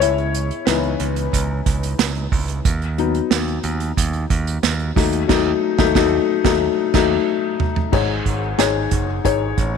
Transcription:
Already playing: C#2
0.00 E4 C#5, closed hi-hat
0.18 closed hi-hat
0.35 closed hi-hat
0.51 closed hi-hat
0.65 C#2 E3 B3 D#4 E4 B4, snare, closed hi-hat
0.83 closed hi-hat
1.00 C#2, closed hi-hat
1.16 closed hi-hat
1.33 C#2, kick, closed hi-hat
1.66 C#2, kick, closed hi-hat
1.83 closed hi-hat
1.99 C#2, snare, closed hi-hat
2.15 closed hi-hat
2.32 C#2, kick, open hi-hat
2.48 closed hi-hat
2.65 D#2, kick, closed hi-hat
2.82 closed hi-hat
2.98 F#3 B3 D#4, closed hi-hat
3.15 closed hi-hat
3.31 D#2, snare, closed hi-hat
3.48 closed hi-hat
3.64 D#2, closed hi-hat
3.80 closed hi-hat
3.97 D#2, kick, closed hi-hat
4.13 closed hi-hat
4.30 D#2, kick, closed hi-hat
4.47 closed hi-hat
4.63 D#2, snare, closed hi-hat
4.79 closed hi-hat
4.96 D#2 F#3 A3 D#4, kick, snare, open hi-hat
5.13 closed hi-hat
5.28 D#2 F#3 A3 D#4, kick, snare, crash
5.78 D#2 F#3 A3 D#4, kick, snare
5.94 D#2 F#3 A3 D#4, kick, snare
6.44 D#2 F#3 A3 D#4, kick, snare
6.93 D#2 F#3 A3 D#4, kick, snare, crash
7.60 floor tom
7.76 floor tom
7.92 G#1 G#2 D#4 G#4 C#5, kick, crash
8.26 G#1, kick, closed hi-hat
8.58 G#1 D#4 G#4 C#5, snare, closed hi-hat
8.91 F#1, kick, closed hi-hat
9.24 G#1 D#4 G#4 C#5, kick, closed hi-hat
9.58 A1, kick, closed hi-hat

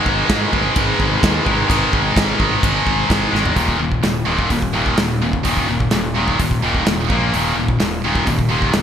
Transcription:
Already playing: G#2 D#3 G#3 D#4 A#4 B4
0.06 G#1, kick
0.29 G#2, kick, snare, crash
0.51 G#1 G#2 D#3 G#3, kick
0.76 G#1, kick, crash
1.00 G#1, kick
1.21 D#2 G#2 D#3 G#3, kick, snare, crash
1.45 G#1 D#3 G#3, kick
1.49 G#2
1.66 G#1 G#2 D#3 G#3, kick
1.71 crash
1.93 G#1, kick
2.16 G#1, kick, snare, crash
2.38 G#1 G#2 D#3 G#3, kick
2.63 G#1, kick, crash
2.87 G#1, kick
3.06 G#1 G#2 D#3 G#3, kick
3.11 snare, crash
3.31 G#1 G#2 D#3 G#3, snare
3.46 floor tom
3.56 D#1 D#2 A#2 D#3, kick, open hi-hat
3.68 kick
3.79 D#1 D#2 A#2
3.92 kick
4.03 D#1 D#2 A#2, snare, open hi-hat
4.25 D#1 D#2 A#2 D#3
4.39 kick
4.50 D#1 D#2 A#2, kick, open hi-hat
4.62 kick
4.73 D#2 A#2 D#3
4.86 kick
4.96 D#1 D#2 A#2, snare, open hi-hat
5.22 D#2 A#2
5.33 kick
5.43 D#1 D#2 A#2 D#3, kick, open hi-hat
5.57 kick
5.69 D#1 D#2 A#2
5.80 kick
5.91 D#1 D#2 A#2, snare, open hi-hat
6.15 D#2 A#2 D#3
6.28 kick
6.39 D#1 D#2 A#2, kick, open hi-hat
6.51 kick
6.62 D#1 D#2 A#2 D#3
6.75 kick
6.86 D#1 D#2 A#2, snare, open hi-hat
7.09 A#1 A#2 F3 A#3, kick
7.32 D#1 D#2 A#2 D#3, open hi-hat
7.56 D#1 D#2 A#2
7.68 kick
7.80 D#1 D#2 A#2, snare, open hi-hat
8.04 D#1 D#2 A#2 D#3
8.15 kick
8.26 D#1 D#2 A#2, kick, open hi-hat
8.39 kick
8.49 D#2 A#2 D#3
8.62 kick
8.72 D#1 D#2 A#2, snare, open hi-hat

